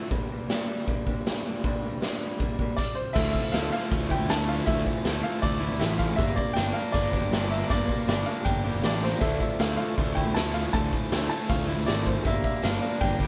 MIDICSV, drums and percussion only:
0, 0, Header, 1, 2, 480
1, 0, Start_track
1, 0, Key_signature, -1, "minor"
1, 0, Tempo, 379267
1, 144, Time_signature, 4, 2, 24, 8
1, 16798, End_track
2, 0, Start_track
2, 0, Title_t, "Drums"
2, 135, Note_on_c, 9, 46, 43
2, 141, Note_on_c, 9, 36, 102
2, 262, Note_off_c, 9, 46, 0
2, 267, Note_off_c, 9, 36, 0
2, 623, Note_on_c, 9, 46, 45
2, 632, Note_on_c, 9, 38, 102
2, 750, Note_off_c, 9, 46, 0
2, 759, Note_off_c, 9, 38, 0
2, 1111, Note_on_c, 9, 36, 98
2, 1111, Note_on_c, 9, 46, 45
2, 1237, Note_off_c, 9, 36, 0
2, 1237, Note_off_c, 9, 46, 0
2, 1351, Note_on_c, 9, 36, 74
2, 1478, Note_off_c, 9, 36, 0
2, 1598, Note_on_c, 9, 46, 50
2, 1606, Note_on_c, 9, 38, 99
2, 1724, Note_off_c, 9, 46, 0
2, 1733, Note_off_c, 9, 38, 0
2, 2076, Note_on_c, 9, 46, 48
2, 2078, Note_on_c, 9, 36, 104
2, 2203, Note_off_c, 9, 46, 0
2, 2204, Note_off_c, 9, 36, 0
2, 2552, Note_on_c, 9, 46, 48
2, 2561, Note_on_c, 9, 38, 96
2, 2678, Note_off_c, 9, 46, 0
2, 2687, Note_off_c, 9, 38, 0
2, 3038, Note_on_c, 9, 36, 95
2, 3039, Note_on_c, 9, 46, 45
2, 3165, Note_off_c, 9, 36, 0
2, 3166, Note_off_c, 9, 46, 0
2, 3279, Note_on_c, 9, 36, 76
2, 3406, Note_off_c, 9, 36, 0
2, 3519, Note_on_c, 9, 36, 93
2, 3523, Note_on_c, 9, 49, 74
2, 3646, Note_off_c, 9, 36, 0
2, 3650, Note_off_c, 9, 49, 0
2, 3997, Note_on_c, 9, 36, 105
2, 3998, Note_on_c, 9, 49, 91
2, 4123, Note_off_c, 9, 36, 0
2, 4124, Note_off_c, 9, 49, 0
2, 4230, Note_on_c, 9, 42, 57
2, 4234, Note_on_c, 9, 36, 73
2, 4357, Note_off_c, 9, 42, 0
2, 4361, Note_off_c, 9, 36, 0
2, 4472, Note_on_c, 9, 42, 80
2, 4481, Note_on_c, 9, 38, 101
2, 4599, Note_off_c, 9, 42, 0
2, 4608, Note_off_c, 9, 38, 0
2, 4715, Note_on_c, 9, 42, 62
2, 4842, Note_off_c, 9, 42, 0
2, 4956, Note_on_c, 9, 36, 99
2, 4960, Note_on_c, 9, 42, 79
2, 5083, Note_off_c, 9, 36, 0
2, 5086, Note_off_c, 9, 42, 0
2, 5194, Note_on_c, 9, 36, 71
2, 5196, Note_on_c, 9, 42, 59
2, 5320, Note_off_c, 9, 36, 0
2, 5322, Note_off_c, 9, 42, 0
2, 5431, Note_on_c, 9, 42, 83
2, 5440, Note_on_c, 9, 38, 107
2, 5558, Note_off_c, 9, 42, 0
2, 5567, Note_off_c, 9, 38, 0
2, 5677, Note_on_c, 9, 42, 64
2, 5803, Note_off_c, 9, 42, 0
2, 5806, Note_on_c, 9, 38, 30
2, 5913, Note_on_c, 9, 36, 108
2, 5914, Note_on_c, 9, 42, 83
2, 5933, Note_off_c, 9, 38, 0
2, 6040, Note_off_c, 9, 36, 0
2, 6041, Note_off_c, 9, 42, 0
2, 6152, Note_on_c, 9, 36, 74
2, 6154, Note_on_c, 9, 42, 60
2, 6279, Note_off_c, 9, 36, 0
2, 6280, Note_off_c, 9, 42, 0
2, 6386, Note_on_c, 9, 42, 83
2, 6395, Note_on_c, 9, 38, 106
2, 6512, Note_off_c, 9, 42, 0
2, 6521, Note_off_c, 9, 38, 0
2, 6637, Note_on_c, 9, 42, 57
2, 6764, Note_off_c, 9, 42, 0
2, 6872, Note_on_c, 9, 42, 77
2, 6873, Note_on_c, 9, 36, 98
2, 6998, Note_off_c, 9, 42, 0
2, 6999, Note_off_c, 9, 36, 0
2, 7120, Note_on_c, 9, 42, 57
2, 7247, Note_off_c, 9, 42, 0
2, 7348, Note_on_c, 9, 42, 76
2, 7357, Note_on_c, 9, 38, 100
2, 7475, Note_off_c, 9, 42, 0
2, 7484, Note_off_c, 9, 38, 0
2, 7590, Note_on_c, 9, 36, 77
2, 7596, Note_on_c, 9, 42, 58
2, 7716, Note_off_c, 9, 36, 0
2, 7723, Note_off_c, 9, 42, 0
2, 7829, Note_on_c, 9, 36, 113
2, 7836, Note_on_c, 9, 42, 76
2, 7956, Note_off_c, 9, 36, 0
2, 7962, Note_off_c, 9, 42, 0
2, 8062, Note_on_c, 9, 42, 60
2, 8067, Note_on_c, 9, 36, 73
2, 8188, Note_off_c, 9, 42, 0
2, 8194, Note_off_c, 9, 36, 0
2, 8304, Note_on_c, 9, 42, 74
2, 8312, Note_on_c, 9, 38, 104
2, 8430, Note_off_c, 9, 42, 0
2, 8439, Note_off_c, 9, 38, 0
2, 8552, Note_on_c, 9, 42, 57
2, 8678, Note_off_c, 9, 42, 0
2, 8785, Note_on_c, 9, 42, 77
2, 8786, Note_on_c, 9, 36, 102
2, 8912, Note_off_c, 9, 42, 0
2, 8913, Note_off_c, 9, 36, 0
2, 9028, Note_on_c, 9, 36, 75
2, 9029, Note_on_c, 9, 42, 54
2, 9155, Note_off_c, 9, 36, 0
2, 9155, Note_off_c, 9, 42, 0
2, 9269, Note_on_c, 9, 42, 77
2, 9278, Note_on_c, 9, 38, 101
2, 9395, Note_off_c, 9, 42, 0
2, 9404, Note_off_c, 9, 38, 0
2, 9507, Note_on_c, 9, 42, 65
2, 9634, Note_off_c, 9, 42, 0
2, 9640, Note_on_c, 9, 38, 29
2, 9748, Note_on_c, 9, 36, 109
2, 9749, Note_on_c, 9, 42, 88
2, 9767, Note_off_c, 9, 38, 0
2, 9874, Note_off_c, 9, 36, 0
2, 9875, Note_off_c, 9, 42, 0
2, 9982, Note_on_c, 9, 42, 64
2, 9986, Note_on_c, 9, 36, 79
2, 10109, Note_off_c, 9, 42, 0
2, 10113, Note_off_c, 9, 36, 0
2, 10228, Note_on_c, 9, 42, 89
2, 10237, Note_on_c, 9, 38, 103
2, 10355, Note_off_c, 9, 42, 0
2, 10364, Note_off_c, 9, 38, 0
2, 10469, Note_on_c, 9, 42, 62
2, 10595, Note_off_c, 9, 42, 0
2, 10704, Note_on_c, 9, 42, 78
2, 10705, Note_on_c, 9, 36, 102
2, 10830, Note_off_c, 9, 42, 0
2, 10831, Note_off_c, 9, 36, 0
2, 10944, Note_on_c, 9, 42, 58
2, 11070, Note_off_c, 9, 42, 0
2, 11179, Note_on_c, 9, 42, 83
2, 11188, Note_on_c, 9, 38, 104
2, 11306, Note_off_c, 9, 42, 0
2, 11315, Note_off_c, 9, 38, 0
2, 11426, Note_on_c, 9, 38, 60
2, 11552, Note_off_c, 9, 38, 0
2, 11651, Note_on_c, 9, 42, 78
2, 11662, Note_on_c, 9, 36, 106
2, 11778, Note_off_c, 9, 42, 0
2, 11789, Note_off_c, 9, 36, 0
2, 11897, Note_on_c, 9, 42, 57
2, 11904, Note_on_c, 9, 36, 74
2, 12024, Note_off_c, 9, 42, 0
2, 12030, Note_off_c, 9, 36, 0
2, 12139, Note_on_c, 9, 42, 74
2, 12148, Note_on_c, 9, 38, 107
2, 12266, Note_off_c, 9, 42, 0
2, 12275, Note_off_c, 9, 38, 0
2, 12387, Note_on_c, 9, 42, 55
2, 12513, Note_off_c, 9, 42, 0
2, 12629, Note_on_c, 9, 36, 98
2, 12633, Note_on_c, 9, 42, 78
2, 12755, Note_off_c, 9, 36, 0
2, 12759, Note_off_c, 9, 42, 0
2, 12868, Note_on_c, 9, 36, 74
2, 12871, Note_on_c, 9, 42, 56
2, 12995, Note_off_c, 9, 36, 0
2, 12997, Note_off_c, 9, 42, 0
2, 13110, Note_on_c, 9, 42, 78
2, 13119, Note_on_c, 9, 38, 105
2, 13237, Note_off_c, 9, 42, 0
2, 13246, Note_off_c, 9, 38, 0
2, 13350, Note_on_c, 9, 42, 58
2, 13476, Note_off_c, 9, 42, 0
2, 13591, Note_on_c, 9, 36, 105
2, 13592, Note_on_c, 9, 42, 82
2, 13718, Note_off_c, 9, 36, 0
2, 13718, Note_off_c, 9, 42, 0
2, 13832, Note_on_c, 9, 36, 78
2, 13839, Note_on_c, 9, 42, 63
2, 13959, Note_off_c, 9, 36, 0
2, 13965, Note_off_c, 9, 42, 0
2, 14071, Note_on_c, 9, 42, 88
2, 14080, Note_on_c, 9, 38, 102
2, 14197, Note_off_c, 9, 42, 0
2, 14206, Note_off_c, 9, 38, 0
2, 14315, Note_on_c, 9, 42, 62
2, 14441, Note_off_c, 9, 42, 0
2, 14548, Note_on_c, 9, 42, 83
2, 14550, Note_on_c, 9, 36, 98
2, 14674, Note_off_c, 9, 42, 0
2, 14677, Note_off_c, 9, 36, 0
2, 14791, Note_on_c, 9, 42, 59
2, 14917, Note_off_c, 9, 42, 0
2, 15029, Note_on_c, 9, 42, 77
2, 15038, Note_on_c, 9, 38, 108
2, 15156, Note_off_c, 9, 42, 0
2, 15165, Note_off_c, 9, 38, 0
2, 15265, Note_on_c, 9, 42, 62
2, 15268, Note_on_c, 9, 36, 76
2, 15392, Note_off_c, 9, 42, 0
2, 15395, Note_off_c, 9, 36, 0
2, 15501, Note_on_c, 9, 42, 79
2, 15507, Note_on_c, 9, 36, 103
2, 15628, Note_off_c, 9, 42, 0
2, 15634, Note_off_c, 9, 36, 0
2, 15740, Note_on_c, 9, 42, 58
2, 15746, Note_on_c, 9, 36, 76
2, 15866, Note_off_c, 9, 42, 0
2, 15873, Note_off_c, 9, 36, 0
2, 15983, Note_on_c, 9, 42, 80
2, 15991, Note_on_c, 9, 38, 108
2, 16109, Note_off_c, 9, 42, 0
2, 16118, Note_off_c, 9, 38, 0
2, 16225, Note_on_c, 9, 42, 55
2, 16351, Note_off_c, 9, 42, 0
2, 16459, Note_on_c, 9, 42, 76
2, 16467, Note_on_c, 9, 36, 103
2, 16586, Note_off_c, 9, 42, 0
2, 16594, Note_off_c, 9, 36, 0
2, 16708, Note_on_c, 9, 36, 74
2, 16710, Note_on_c, 9, 42, 58
2, 16798, Note_off_c, 9, 36, 0
2, 16798, Note_off_c, 9, 42, 0
2, 16798, End_track
0, 0, End_of_file